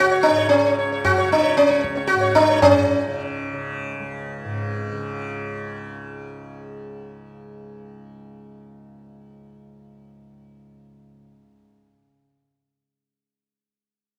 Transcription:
Already playing: C#2 G#2 C#3 C#5
0.00 F#4, tabla tin
0.11 C#5
0.23 D4, tabla na
0.29 G#2
0.38 C#5
0.49 C#4, tabla na
0.66 C#5
0.75 C#3 C#5
0.92 C#5
1.05 F#4, tabla na, tabla ge
1.18 C#3 C#5
1.31 D4, tabla te
1.43 C#5
1.57 C#4, tabla te
1.68 C#2 C#5, tabla te
1.81 C#5, tabla ke
1.95 C#5, tabla te
2.07 F#4, tabla te
2.14 G#2
2.21 C#5, tabla te
2.35 D4, tabla ke
2.49 C#5, tabla te
2.62 G#2 C#4, tabla na, tabla ge
3.07 C#3
3.53 C#3
3.99 C#2
4.44 G#2
4.63 C4
4.92 C#3

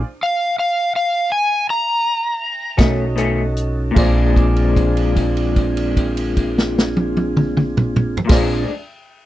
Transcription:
0.23 F5
0.59 F5
0.96 F5
1.32 G#5
1.70 A#5
2.77 B1 D#3 A3 C#4 D#4 F#4 A4 C#5 D#5, kick, snare, closed hi-hat
3.16 B2 D#3 A3 C#4, closed hi-hat
3.56 closed hi-hat
3.91 A#2 F4
3.96 A#1 F3 C4 D4 F4 G#4 C5 D5, kick, crash
4.03 G#3
4.08 D4
4.36 kick, crash
4.56 crash
4.76 kick, crash
4.97 crash
5.16 kick, crash
5.37 crash
5.56 kick, crash
5.77 crash
5.97 kick, crash
6.17 crash
6.37 kick, crash
6.58 snare
6.78 snare
6.97 high tom
7.17 high tom
7.37 mid tom
7.57 mid tom
7.77 mid tom
7.96 mid tom
8.17 floor tom
8.25 A#2 C4 D4 F4 G#4
8.29 A#1 F3 C5 D5, kick, snare, crash
8.37 G#3
8.42 D4

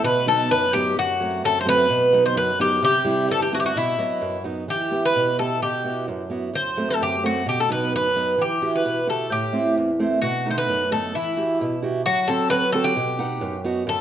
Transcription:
0.03 B2 B4
0.26 F#3 B3 D#4 A4
0.51 F#2 B4
0.73 F#3 B3 D#4 G4
0.97 F#2 F#4
1.20 F#3 A3 C4
1.44 F#2 A4
1.61 C5
1.65 F#3 A3 C4 B4
1.90 B2
2.13 F#3 B3 D#4
2.26 C5
2.36 F#2 B4
2.59 F#3 B3 D#4 G4
2.82 C3 G4
3.05 G3 C4 E4
3.28 G2 A4
3.42 G4
3.52 G3 C4 E4 F#4
3.60 G4
3.66 F#4
3.75 B2 E4
3.99 F#3 B3 D#5
4.22 F#2
4.44 F#3 B3 D#4
4.68 E3 G4
4.91 B3 E4 G4
5.05 B4
5.16 B2
5.38 B3 E4 G4 A4
5.62 B2 G4
5.84 B3 E4 F#4
6.08 F#2
6.30 B3 E4 F#4
6.53 F#2 C5
6.77 F#3 A3 C4
6.91 A4
7.01 F#2 G4
7.23 F#3 A3 C4 F#4
7.46 B2 G4
7.60 A4
7.69 F#3 B3 D#4 B4
7.93 F#2 B4
8.16 F#3 B3 D#4
8.38 E3 G4
8.62 E4 F#4 G4
8.76 B4
8.85 B2
9.07 E4 F#4 G4 A4
9.30 A2 G4
9.53 A3 C4 E4
9.77 E2
9.99 A3 C4 E4
10.22 B2 F#4
10.46 A3 B3 D#4
10.51 C5
10.58 B4
10.69 F#2
10.91 A3 B3 D#4 A4
11.14 E3 E4
11.37 E4 F#4 G4
11.61 B2
11.82 E4 F#4 G4
12.06 F#3 F#4
12.28 C4 F#4 A4
12.50 F#3 B4
12.72 C4 F#4 A4
12.84 G4
12.96 B2
13.19 B3 D#4 F#5
13.41 F#2
13.64 B3 D#4 F#4
13.87 F#2 A4

